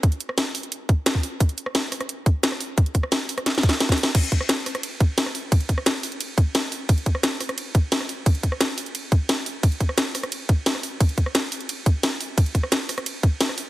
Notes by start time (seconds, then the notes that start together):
0.03 kick, closed hi-hat
0.12 closed hi-hat
0.20 closed hi-hat
0.29 cross-stick
0.38 snare, closed hi-hat
0.55 open hi-hat
0.63 closed hi-hat
0.72 closed hi-hat
0.89 kick, closed hi-hat
1.06 snare, closed hi-hat
1.15 kick
1.23 open hi-hat
1.40 kick, closed hi-hat
1.49 closed hi-hat
1.58 closed hi-hat
1.66 cross-stick
1.75 snare, closed hi-hat
1.92 cross-stick, open hi-hat
2.01 cross-stick, closed hi-hat
2.09 closed hi-hat
2.26 kick, closed hi-hat
2.43 snare, closed hi-hat
2.52 cross-stick
2.61 open hi-hat
2.78 kick, closed hi-hat
2.86 closed hi-hat
2.95 kick, closed hi-hat
3.03 cross-stick
3.12 snare, closed hi-hat
3.29 open hi-hat
3.38 cross-stick, closed hi-hat
3.46 snare, closed hi-hat
3.55 snare, closed hi-hat
3.63 kick, closed hi-hat
3.69 snare
3.80 snare, closed hi-hat
3.89 kick, snare, closed hi-hat
3.98 open hi-hat
4.03 snare
4.15 kick, closed hi-hat, crash, ride
4.23 closed hi-hat
4.32 kick, closed hi-hat
4.41 cross-stick
4.49 snare, closed hi-hat, ride
4.66 cross-stick, open hi-hat
4.75 cross-stick, closed hi-hat
4.83 closed hi-hat, ride
5.00 kick, closed hi-hat
5.18 snare, closed hi-hat, ride
5.26 cross-stick
5.35 open hi-hat
5.52 kick, closed hi-hat, ride
5.61 closed hi-hat
5.69 kick, closed hi-hat
5.78 cross-stick
5.86 snare, closed hi-hat, ride
6.03 open hi-hat
6.12 closed hi-hat
6.21 closed hi-hat, ride
6.38 kick, closed hi-hat
6.55 snare, closed hi-hat, ride
6.72 open hi-hat
6.89 kick, closed hi-hat, ride
6.98 closed hi-hat
7.06 kick, closed hi-hat
7.15 cross-stick
7.23 snare, closed hi-hat, ride
7.41 cross-stick, open hi-hat
7.49 cross-stick, closed hi-hat
7.58 closed hi-hat, ride
7.75 kick, closed hi-hat
7.92 snare, closed hi-hat, ride
8.01 cross-stick
8.09 open hi-hat
8.26 kick, closed hi-hat, ride
8.35 closed hi-hat
8.43 kick, closed hi-hat
8.52 cross-stick
8.61 snare, closed hi-hat, ride
8.78 open hi-hat
8.86 closed hi-hat
8.95 closed hi-hat, ride
9.12 kick, closed hi-hat
9.29 snare, closed hi-hat, ride
9.46 open hi-hat
9.63 kick, closed hi-hat, ride
9.72 closed hi-hat
9.80 kick, closed hi-hat
9.89 cross-stick
9.98 snare, closed hi-hat, ride
10.15 cross-stick, open hi-hat
10.23 cross-stick, closed hi-hat
10.32 closed hi-hat, ride
10.49 kick, closed hi-hat
10.66 snare, closed hi-hat, ride
10.75 cross-stick
10.83 open hi-hat
11.00 kick, closed hi-hat, ride
11.09 closed hi-hat
11.18 kick, closed hi-hat
11.26 cross-stick
11.35 snare, closed hi-hat, ride
11.52 open hi-hat
11.61 closed hi-hat
11.69 closed hi-hat, ride
11.86 kick, closed hi-hat
12.03 snare, closed hi-hat, ride
12.21 open hi-hat
12.38 kick, closed hi-hat, ride
12.46 closed hi-hat
12.55 kick, closed hi-hat
12.63 cross-stick
12.72 snare, closed hi-hat, ride
12.89 cross-stick, open hi-hat
12.98 cross-stick, closed hi-hat
13.06 closed hi-hat, ride
13.23 kick, closed hi-hat
13.41 snare, closed hi-hat, ride
13.49 cross-stick
13.58 open hi-hat